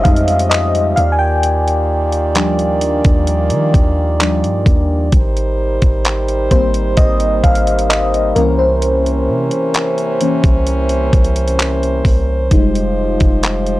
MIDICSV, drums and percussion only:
0, 0, Header, 1, 2, 480
1, 0, Start_track
1, 0, Key_signature, -3, "major"
1, 0, Tempo, 923077
1, 747, Time_signature, 4, 2, 24, 8
1, 7175, End_track
2, 0, Start_track
2, 0, Title_t, "Drums"
2, 26, Note_on_c, 9, 36, 99
2, 26, Note_on_c, 9, 42, 57
2, 78, Note_off_c, 9, 36, 0
2, 78, Note_off_c, 9, 42, 0
2, 85, Note_on_c, 9, 42, 61
2, 137, Note_off_c, 9, 42, 0
2, 145, Note_on_c, 9, 42, 63
2, 197, Note_off_c, 9, 42, 0
2, 205, Note_on_c, 9, 42, 59
2, 257, Note_off_c, 9, 42, 0
2, 269, Note_on_c, 9, 42, 74
2, 270, Note_on_c, 9, 39, 107
2, 321, Note_off_c, 9, 42, 0
2, 322, Note_off_c, 9, 39, 0
2, 389, Note_on_c, 9, 42, 45
2, 441, Note_off_c, 9, 42, 0
2, 506, Note_on_c, 9, 42, 63
2, 558, Note_off_c, 9, 42, 0
2, 745, Note_on_c, 9, 42, 75
2, 797, Note_off_c, 9, 42, 0
2, 871, Note_on_c, 9, 42, 45
2, 923, Note_off_c, 9, 42, 0
2, 1105, Note_on_c, 9, 42, 46
2, 1157, Note_off_c, 9, 42, 0
2, 1223, Note_on_c, 9, 42, 80
2, 1229, Note_on_c, 9, 39, 118
2, 1275, Note_off_c, 9, 42, 0
2, 1281, Note_off_c, 9, 39, 0
2, 1346, Note_on_c, 9, 42, 52
2, 1398, Note_off_c, 9, 42, 0
2, 1463, Note_on_c, 9, 42, 77
2, 1515, Note_off_c, 9, 42, 0
2, 1583, Note_on_c, 9, 42, 61
2, 1585, Note_on_c, 9, 36, 90
2, 1635, Note_off_c, 9, 42, 0
2, 1637, Note_off_c, 9, 36, 0
2, 1702, Note_on_c, 9, 42, 71
2, 1754, Note_off_c, 9, 42, 0
2, 1820, Note_on_c, 9, 42, 55
2, 1872, Note_off_c, 9, 42, 0
2, 1945, Note_on_c, 9, 36, 94
2, 1948, Note_on_c, 9, 42, 67
2, 1997, Note_off_c, 9, 36, 0
2, 2000, Note_off_c, 9, 42, 0
2, 2187, Note_on_c, 9, 42, 72
2, 2188, Note_on_c, 9, 39, 105
2, 2239, Note_off_c, 9, 42, 0
2, 2240, Note_off_c, 9, 39, 0
2, 2309, Note_on_c, 9, 42, 46
2, 2361, Note_off_c, 9, 42, 0
2, 2423, Note_on_c, 9, 36, 88
2, 2425, Note_on_c, 9, 42, 63
2, 2475, Note_off_c, 9, 36, 0
2, 2477, Note_off_c, 9, 42, 0
2, 2664, Note_on_c, 9, 42, 73
2, 2665, Note_on_c, 9, 36, 108
2, 2716, Note_off_c, 9, 42, 0
2, 2717, Note_off_c, 9, 36, 0
2, 2791, Note_on_c, 9, 42, 48
2, 2843, Note_off_c, 9, 42, 0
2, 3025, Note_on_c, 9, 42, 46
2, 3028, Note_on_c, 9, 36, 77
2, 3077, Note_off_c, 9, 42, 0
2, 3080, Note_off_c, 9, 36, 0
2, 3145, Note_on_c, 9, 42, 80
2, 3151, Note_on_c, 9, 39, 119
2, 3197, Note_off_c, 9, 42, 0
2, 3203, Note_off_c, 9, 39, 0
2, 3268, Note_on_c, 9, 42, 51
2, 3320, Note_off_c, 9, 42, 0
2, 3385, Note_on_c, 9, 42, 71
2, 3386, Note_on_c, 9, 36, 92
2, 3437, Note_off_c, 9, 42, 0
2, 3438, Note_off_c, 9, 36, 0
2, 3505, Note_on_c, 9, 42, 61
2, 3557, Note_off_c, 9, 42, 0
2, 3624, Note_on_c, 9, 42, 68
2, 3627, Note_on_c, 9, 36, 98
2, 3676, Note_off_c, 9, 42, 0
2, 3679, Note_off_c, 9, 36, 0
2, 3743, Note_on_c, 9, 42, 54
2, 3795, Note_off_c, 9, 42, 0
2, 3867, Note_on_c, 9, 36, 98
2, 3868, Note_on_c, 9, 42, 58
2, 3919, Note_off_c, 9, 36, 0
2, 3920, Note_off_c, 9, 42, 0
2, 3927, Note_on_c, 9, 42, 60
2, 3979, Note_off_c, 9, 42, 0
2, 3989, Note_on_c, 9, 42, 58
2, 4041, Note_off_c, 9, 42, 0
2, 4049, Note_on_c, 9, 42, 59
2, 4101, Note_off_c, 9, 42, 0
2, 4111, Note_on_c, 9, 42, 74
2, 4112, Note_on_c, 9, 39, 107
2, 4163, Note_off_c, 9, 42, 0
2, 4164, Note_off_c, 9, 39, 0
2, 4233, Note_on_c, 9, 42, 48
2, 4285, Note_off_c, 9, 42, 0
2, 4348, Note_on_c, 9, 42, 63
2, 4400, Note_off_c, 9, 42, 0
2, 4587, Note_on_c, 9, 42, 76
2, 4639, Note_off_c, 9, 42, 0
2, 4713, Note_on_c, 9, 42, 45
2, 4765, Note_off_c, 9, 42, 0
2, 4946, Note_on_c, 9, 42, 46
2, 4998, Note_off_c, 9, 42, 0
2, 5066, Note_on_c, 9, 42, 81
2, 5072, Note_on_c, 9, 39, 126
2, 5118, Note_off_c, 9, 42, 0
2, 5124, Note_off_c, 9, 39, 0
2, 5189, Note_on_c, 9, 42, 50
2, 5241, Note_off_c, 9, 42, 0
2, 5307, Note_on_c, 9, 42, 76
2, 5359, Note_off_c, 9, 42, 0
2, 5427, Note_on_c, 9, 42, 57
2, 5428, Note_on_c, 9, 36, 96
2, 5479, Note_off_c, 9, 42, 0
2, 5480, Note_off_c, 9, 36, 0
2, 5546, Note_on_c, 9, 42, 74
2, 5598, Note_off_c, 9, 42, 0
2, 5664, Note_on_c, 9, 42, 54
2, 5716, Note_off_c, 9, 42, 0
2, 5787, Note_on_c, 9, 36, 95
2, 5788, Note_on_c, 9, 42, 59
2, 5839, Note_off_c, 9, 36, 0
2, 5840, Note_off_c, 9, 42, 0
2, 5847, Note_on_c, 9, 42, 55
2, 5899, Note_off_c, 9, 42, 0
2, 5907, Note_on_c, 9, 42, 60
2, 5959, Note_off_c, 9, 42, 0
2, 5968, Note_on_c, 9, 42, 57
2, 6020, Note_off_c, 9, 42, 0
2, 6030, Note_on_c, 9, 42, 72
2, 6031, Note_on_c, 9, 39, 111
2, 6082, Note_off_c, 9, 42, 0
2, 6083, Note_off_c, 9, 39, 0
2, 6152, Note_on_c, 9, 42, 48
2, 6204, Note_off_c, 9, 42, 0
2, 6265, Note_on_c, 9, 36, 87
2, 6267, Note_on_c, 9, 46, 68
2, 6317, Note_off_c, 9, 36, 0
2, 6319, Note_off_c, 9, 46, 0
2, 6506, Note_on_c, 9, 42, 75
2, 6507, Note_on_c, 9, 36, 109
2, 6558, Note_off_c, 9, 42, 0
2, 6559, Note_off_c, 9, 36, 0
2, 6632, Note_on_c, 9, 42, 46
2, 6684, Note_off_c, 9, 42, 0
2, 6865, Note_on_c, 9, 42, 43
2, 6868, Note_on_c, 9, 36, 77
2, 6917, Note_off_c, 9, 42, 0
2, 6920, Note_off_c, 9, 36, 0
2, 6984, Note_on_c, 9, 42, 77
2, 6990, Note_on_c, 9, 39, 125
2, 7036, Note_off_c, 9, 42, 0
2, 7042, Note_off_c, 9, 39, 0
2, 7106, Note_on_c, 9, 42, 50
2, 7158, Note_off_c, 9, 42, 0
2, 7175, End_track
0, 0, End_of_file